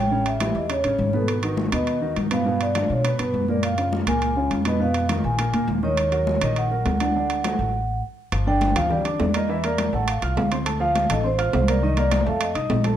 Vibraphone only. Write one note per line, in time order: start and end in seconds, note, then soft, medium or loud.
0.00 0.27 G5 loud
0.28 0.57 E5 loud
0.57 0.70 D#5 medium
0.71 1.11 C#5 medium
1.15 1.22 A4 medium
1.30 1.56 B4 medium
1.74 2.14 D#5 medium
2.33 2.62 F5 medium
2.62 2.89 D5 medium
2.91 3.06 C#5 medium
3.06 3.50 B4 medium
3.50 3.64 D5 medium
3.64 3.91 F5 medium
4.08 4.49 G#5 medium
4.67 4.80 D#5 medium
4.82 5.08 F5 medium
5.25 5.65 G#5 medium
5.84 6.44 C#5 medium
6.43 6.49 D#5 medium
6.58 7.00 F#5 medium
7.02 8.00 F#5 medium
8.48 8.74 G5 loud
8.77 8.92 F5 loud
8.92 9.20 D5 medium
9.21 9.34 D5 medium
9.36 9.50 D#5 medium
9.51 9.65 E5 loud
9.65 9.92 D5 loud
9.95 10.07 F#5 medium
10.09 10.49 F5 medium
10.82 11.08 F5 loud
11.12 11.26 D#5 loud
11.26 11.54 C5 medium
11.55 11.61 C5 medium
11.69 11.84 D5 medium
11.84 11.97 D#5 loud
11.99 12.22 D5 loud
12.24 12.27 E5 medium
12.28 12.42 F5 medium
12.42 12.82 D#5 medium